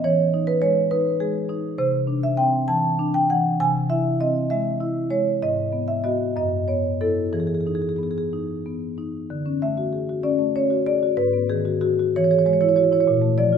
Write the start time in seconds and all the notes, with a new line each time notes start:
0.04 E3 C#5
0.34 D#4
0.47 B4
0.62 G#3 C#5
0.91 D#4 B4
1.20 G#3 G#4
1.49 D#4
1.78 C3 C5
2.07 D4
2.23 E5
2.37 C4 G5
2.68 E3 A5
2.99 D4
3.14 G5
3.30 E3 F#5
3.60 C3 G#5
3.90 E4 E5
4.20 C4 D#5
4.50 G#3 E5
4.80 E4
5.10 G#3 C#5
5.42 G#2 D#5
5.73 B3
5.88 E5
6.04 B3 F#4 D#5
6.36 F#2 D#5
6.68 B3 C#5
7.01 B3 E4 A4
7.33 E3 G#4
7.40 G#4
7.47 G#4
7.54 G#4
7.61 G#4
7.67 D#4 G#4
7.75 G#4
7.82 G#4
7.89 G#4
7.96 B3 G#4
8.03 G#4
8.11 G#4
8.18 G#4
8.33 D#4
8.66 B3
8.98 D#4
9.30 D3
9.46 C#4
9.62 A3 E5
9.77 F#4
9.93 G#4
10.09 F#4
10.23 C#4 D5
10.39 A3
10.56 C#4 C#5
10.70 F#4
10.87 G#4 D5
11.03 F#4
11.17 G#2 B4
11.33 B3
11.50 D#3 G#4
11.65 F#4
11.81 F#4 G#4
11.99 F#4
12.16 E3 C#5
12.24 C#5
12.31 G#4 C#5
12.39 C#5
12.46 G#3 C#5
12.53 C#5
12.61 E4 C#5
12.69 C#5
12.76 F#4 C#5
12.84 C#5
12.92 E4 C#5
13.00 C#5
13.07 A#2
13.22 A3
13.38 F3 D5
13.52 F4